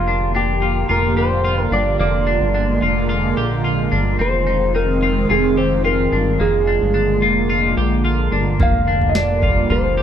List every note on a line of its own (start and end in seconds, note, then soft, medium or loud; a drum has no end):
0.00 0.85 F1 medium
0.00 4.16 D3 medium
0.00 1.97 A#3 medium
0.00 0.36 F4 medium
0.00 4.15 F4 medium
0.00 1.97 G4 medium
0.08 0.33 D4 medium
0.35 0.62 D4 medium
0.35 0.91 G4 medium
0.62 0.88 F4 medium
0.89 1.68 F1 medium
0.89 1.16 F4 medium
0.89 1.18 A#4 medium
1.17 1.44 G4 medium
1.17 1.62 C5 medium
1.44 1.72 F4 medium
1.62 1.73 A#4 medium
1.71 1.98 G1 medium
1.71 2.00 D4 medium
1.71 1.99 D5 medium
1.99 2.39 F1 medium
1.99 4.18 G#3 medium
1.99 2.27 A#3 medium
1.99 4.18 A#3 medium
1.99 3.61 D5 medium
2.27 2.53 D4 medium
2.41 2.80 G1 medium
2.54 2.82 D4 medium
2.82 3.34 F1 medium
2.82 3.08 F4 medium
3.09 3.37 F4 medium
3.37 3.89 A#1 medium
3.37 3.64 G4 medium
3.64 3.92 F4 medium
3.92 4.18 G1 medium
3.92 4.19 D4 medium
4.19 5.26 F1 medium
4.19 6.37 D#3 medium
4.19 8.56 G#3 medium
4.19 6.37 C4 medium
4.19 4.46 C4 medium
4.19 10.03 F4 medium
4.19 4.72 C5 medium
4.47 4.73 D#4 medium
4.75 5.02 D#4 medium
4.75 5.26 A#4 medium
5.03 5.28 F4 medium
5.30 6.08 F1 medium
5.30 5.57 F4 medium
5.30 5.56 G#4 medium
5.57 5.84 G4 medium
5.57 5.85 C5 medium
5.85 6.12 F4 medium
5.85 6.42 A#4 medium
6.12 6.38 G1 medium
6.12 6.40 D4 medium
6.40 6.79 F1 medium
6.40 10.03 D3 medium
6.40 6.67 A#3 medium
6.40 10.03 A#3 medium
6.40 8.29 G#4 medium
6.67 6.93 D4 medium
6.82 7.24 G1 medium
6.94 7.22 D4 medium
7.22 7.75 F1 medium
7.22 7.48 F4 medium
7.50 7.77 F4 medium
7.77 8.30 A#1 medium
7.77 8.04 G4 medium
8.04 8.32 F4 medium
8.32 8.58 G1 medium
8.32 8.60 D4 medium
8.60 9.66 F1 medium
8.60 10.03 G3 medium
8.60 8.88 A#3 medium
8.60 9.11 F5 medium
8.60 kick medium
8.60 floor tom medium
8.87 9.14 D4 medium
9.01 floor tom medium
9.09 9.16 D#5 medium
9.15 9.43 D4 medium
9.15 9.68 D5 medium
9.15 snare loud
9.42 9.69 F4 medium
9.42 kick medium
9.42 floor tom medium
9.70 10.03 F1 medium
9.70 9.97 F4 medium
9.70 10.03 C5 medium
9.70 floor tom medium
9.97 10.03 G4 medium